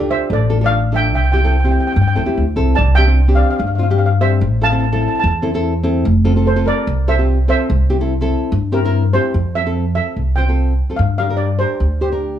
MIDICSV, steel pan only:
0, 0, Header, 1, 2, 480
1, 0, Start_track
1, 0, Key_signature, -1, "major"
1, 0, Tempo, 411241
1, 1305, Time_signature, 4, 2, 24, 8
1, 14463, End_track
2, 0, Start_track
2, 0, Title_t, "Steel pan"
2, 0, Program_c, 0, 114
2, 124, Note_on_c, 0, 76, 93
2, 125, Note_on_c, 0, 72, 71
2, 338, Note_off_c, 0, 72, 0
2, 361, Note_off_c, 0, 76, 0
2, 372, Note_on_c, 0, 69, 65
2, 387, Note_on_c, 0, 74, 91
2, 703, Note_off_c, 0, 69, 0
2, 736, Note_off_c, 0, 74, 0
2, 750, Note_on_c, 0, 74, 77
2, 769, Note_on_c, 0, 77, 105
2, 1060, Note_off_c, 0, 74, 0
2, 1070, Note_off_c, 0, 77, 0
2, 1099, Note_on_c, 0, 76, 79
2, 1118, Note_on_c, 0, 79, 110
2, 1307, Note_off_c, 0, 76, 0
2, 1334, Note_off_c, 0, 79, 0
2, 1335, Note_on_c, 0, 76, 66
2, 1348, Note_on_c, 0, 79, 90
2, 1408, Note_off_c, 0, 76, 0
2, 1415, Note_off_c, 0, 79, 0
2, 1451, Note_on_c, 0, 79, 66
2, 1507, Note_off_c, 0, 79, 0
2, 1541, Note_on_c, 0, 79, 75
2, 1589, Note_off_c, 0, 79, 0
2, 1603, Note_on_c, 0, 79, 72
2, 1674, Note_off_c, 0, 79, 0
2, 1704, Note_on_c, 0, 79, 72
2, 1762, Note_off_c, 0, 79, 0
2, 1778, Note_on_c, 0, 79, 55
2, 1843, Note_off_c, 0, 79, 0
2, 1863, Note_on_c, 0, 79, 65
2, 1935, Note_off_c, 0, 79, 0
2, 1955, Note_on_c, 0, 79, 53
2, 1986, Note_off_c, 0, 79, 0
2, 2000, Note_on_c, 0, 79, 60
2, 2086, Note_off_c, 0, 79, 0
2, 2103, Note_on_c, 0, 79, 60
2, 2171, Note_off_c, 0, 79, 0
2, 2185, Note_on_c, 0, 79, 65
2, 2233, Note_off_c, 0, 79, 0
2, 2247, Note_on_c, 0, 79, 60
2, 2339, Note_off_c, 0, 79, 0
2, 2353, Note_on_c, 0, 79, 64
2, 2410, Note_off_c, 0, 79, 0
2, 2424, Note_on_c, 0, 79, 68
2, 2506, Note_off_c, 0, 79, 0
2, 2520, Note_on_c, 0, 79, 64
2, 2611, Note_off_c, 0, 79, 0
2, 3213, Note_on_c, 0, 81, 98
2, 3228, Note_on_c, 0, 74, 78
2, 3445, Note_on_c, 0, 79, 105
2, 3452, Note_off_c, 0, 74, 0
2, 3458, Note_on_c, 0, 76, 76
2, 3469, Note_off_c, 0, 81, 0
2, 3903, Note_off_c, 0, 79, 0
2, 3910, Note_off_c, 0, 76, 0
2, 3912, Note_on_c, 0, 77, 91
2, 3934, Note_on_c, 0, 74, 75
2, 3993, Note_off_c, 0, 77, 0
2, 4007, Note_on_c, 0, 77, 65
2, 4028, Note_off_c, 0, 74, 0
2, 4075, Note_off_c, 0, 77, 0
2, 4089, Note_on_c, 0, 77, 76
2, 4173, Note_off_c, 0, 77, 0
2, 4187, Note_on_c, 0, 77, 59
2, 4269, Note_off_c, 0, 77, 0
2, 4283, Note_on_c, 0, 77, 59
2, 4363, Note_off_c, 0, 77, 0
2, 4377, Note_on_c, 0, 77, 55
2, 4459, Note_off_c, 0, 77, 0
2, 4473, Note_on_c, 0, 77, 60
2, 4542, Note_off_c, 0, 77, 0
2, 4556, Note_on_c, 0, 77, 56
2, 4636, Note_off_c, 0, 77, 0
2, 4649, Note_on_c, 0, 77, 66
2, 4725, Note_off_c, 0, 77, 0
2, 4739, Note_on_c, 0, 77, 68
2, 4821, Note_off_c, 0, 77, 0
2, 4915, Note_on_c, 0, 72, 74
2, 4915, Note_on_c, 0, 76, 94
2, 5359, Note_off_c, 0, 72, 0
2, 5359, Note_off_c, 0, 76, 0
2, 5409, Note_on_c, 0, 81, 103
2, 5410, Note_on_c, 0, 77, 75
2, 5477, Note_off_c, 0, 81, 0
2, 5488, Note_off_c, 0, 77, 0
2, 5592, Note_on_c, 0, 81, 62
2, 5630, Note_off_c, 0, 81, 0
2, 5644, Note_on_c, 0, 81, 55
2, 5735, Note_off_c, 0, 81, 0
2, 5750, Note_on_c, 0, 81, 60
2, 5825, Note_off_c, 0, 81, 0
2, 5852, Note_on_c, 0, 81, 52
2, 5915, Note_off_c, 0, 81, 0
2, 5929, Note_on_c, 0, 81, 63
2, 5996, Note_off_c, 0, 81, 0
2, 6010, Note_on_c, 0, 81, 58
2, 6049, Note_off_c, 0, 81, 0
2, 6063, Note_on_c, 0, 81, 74
2, 6140, Note_off_c, 0, 81, 0
2, 6154, Note_on_c, 0, 81, 61
2, 6247, Note_off_c, 0, 81, 0
2, 7538, Note_on_c, 0, 69, 63
2, 7553, Note_on_c, 0, 72, 86
2, 7765, Note_off_c, 0, 69, 0
2, 7769, Note_on_c, 0, 70, 78
2, 7793, Note_on_c, 0, 74, 97
2, 7796, Note_off_c, 0, 72, 0
2, 8223, Note_off_c, 0, 70, 0
2, 8235, Note_off_c, 0, 74, 0
2, 8263, Note_on_c, 0, 72, 75
2, 8275, Note_on_c, 0, 76, 97
2, 8709, Note_off_c, 0, 72, 0
2, 8739, Note_off_c, 0, 76, 0
2, 8745, Note_on_c, 0, 72, 83
2, 8753, Note_on_c, 0, 76, 109
2, 10197, Note_on_c, 0, 70, 83
2, 10376, Note_off_c, 0, 72, 0
2, 10379, Note_off_c, 0, 76, 0
2, 10636, Note_off_c, 0, 70, 0
2, 10660, Note_on_c, 0, 72, 103
2, 11151, Note_on_c, 0, 76, 100
2, 11155, Note_off_c, 0, 72, 0
2, 11602, Note_off_c, 0, 76, 0
2, 11616, Note_on_c, 0, 76, 89
2, 12088, Note_on_c, 0, 79, 82
2, 12113, Note_off_c, 0, 76, 0
2, 12797, Note_on_c, 0, 77, 78
2, 12838, Note_off_c, 0, 79, 0
2, 13037, Note_off_c, 0, 77, 0
2, 13051, Note_on_c, 0, 77, 93
2, 13267, Note_on_c, 0, 74, 86
2, 13305, Note_off_c, 0, 77, 0
2, 13524, Note_on_c, 0, 72, 94
2, 13534, Note_off_c, 0, 74, 0
2, 14022, Note_on_c, 0, 67, 74
2, 14030, Note_off_c, 0, 72, 0
2, 14463, Note_off_c, 0, 67, 0
2, 14463, End_track
0, 0, End_of_file